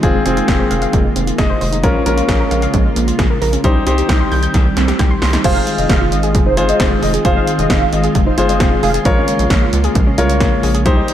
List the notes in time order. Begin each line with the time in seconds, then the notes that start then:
Already playing: D#3 G#3 F4
0.03 F1 G#3 A#3 C4 F4 G#4, kick, closed hi-hat
0.14 G#3
0.26 F1 C4 F4 G#4, closed hi-hat
0.37 F4, closed hi-hat
0.48 F1 G#4, kick, snare, closed hi-hat
0.59 C5
0.71 F1 F5, closed hi-hat
0.82 F5, closed hi-hat
0.93 F1 G#3, kick, closed hi-hat
1.05 G#3
1.16 F1 C4, closed hi-hat
1.27 F4, closed hi-hat
1.38 F1 G#4 D#5, kick, snare, closed hi-hat
1.50 C5
1.61 F1 C5, open hi-hat
1.72 D#4, closed hi-hat
1.84 A#1 C#3 G#3 A#3 C#4 F4 A#4, kick, closed hi-hat
1.95 G#3
2.06 A#1 A#3 C#4 F4 A#4, closed hi-hat
2.17 F4, closed hi-hat
2.29 A#1 G#4, kick, snare, closed hi-hat
2.40 A#4
2.51 A#1 F5, closed hi-hat
2.62 F5, closed hi-hat
2.74 A#1 G#3, kick, closed hi-hat
2.85 G#3
2.96 A#1 A#3, closed hi-hat
3.08 F4, closed hi-hat
3.19 A#1 G#4, kick, snare, closed hi-hat
3.30 A#4
3.41 A#1 A#4, open hi-hat
3.53 C#4, closed hi-hat
3.64 C2 D#3 G3 C4 D#4 G4 C5, kick, closed hi-hat
3.75 G3
3.87 C2 C4 D#4 G4 C5, closed hi-hat
3.98 G4, closed hi-hat
4.09 C2 G5, kick, snare, closed hi-hat
4.20 C6
4.32 C2 G6, open hi-hat
4.43 G6, closed hi-hat
4.54 C2 G3, kick, snare, closed hi-hat
4.65 G3
4.77 C2 C4, snare, closed hi-hat
4.88 G4, snare, closed hi-hat
4.99 C2 G5, kick, snare, closed hi-hat
5.11 C6
5.22 C2 C6, snare, open hi-hat
5.33 D#4, snare, closed hi-hat
5.44 F1 D#3 G#3 C4 F4 G#4 C5 F5, kick, closed hi-hat, crash
5.56 D#4
5.67 G#3, closed hi-hat
5.78 F1 D#5, closed hi-hat
5.89 F1 C4 F5, kick, snare, closed hi-hat
6.01 F4
6.12 G#1 D#5, closed hi-hat
6.23 G#4, closed hi-hat
6.35 F1 G#3, kick, closed hi-hat
6.46 D#4 C5
6.57 G1 G#3 F4 G#4 C5, closed hi-hat
6.69 D#5, closed hi-hat
6.80 F1 C4 C5, kick, snare, closed hi-hat
6.91 F4
7.02 F1 G#4 D#5, open hi-hat
7.14 G#4, closed hi-hat
7.25 F1 G#3 F4 G#4 C5 F5, kick, closed hi-hat
7.36 D#4
7.47 G#3, closed hi-hat
7.59 F1 D#5, closed hi-hat
7.70 F1 C4 F5, kick, snare, closed hi-hat
7.81 F4
7.92 G#1 D#5, closed hi-hat
8.04 G#4, closed hi-hat
8.15 F1 G#3, kick, closed hi-hat
8.26 D#4 C5
8.38 G1 G#3 F4 G#4 C5, closed hi-hat
8.49 D#5, closed hi-hat
8.60 F1 C4, kick, snare, closed hi-hat
8.71 F4
8.83 F1 G#4 F5, open hi-hat
8.94 G#4, closed hi-hat
9.05 A#1 C#3 G#3 A#3 F4 A#4 C#5, kick, closed hi-hat
9.17 C#4
9.28 G#3, closed hi-hat
9.39 A#1, closed hi-hat
9.50 A#1 A#3, kick, snare, closed hi-hat
9.62 F4
9.73 C#2, closed hi-hat
9.84 G#4, closed hi-hat
9.95 A#1 G#3, kick, closed hi-hat
10.07 C#4
10.18 C2 G#3 F4 A#4 C#5, closed hi-hat
10.30 closed hi-hat
10.40 A#1 A#3, kick, snare, closed hi-hat
10.52 F4
10.63 A#1 G#4, open hi-hat
10.74 G#4, closed hi-hat
10.86 C2 D#3 G3 C4 D#4 G4 C5, kick, closed hi-hat
10.97 D#4
11.08 G3, closed hi-hat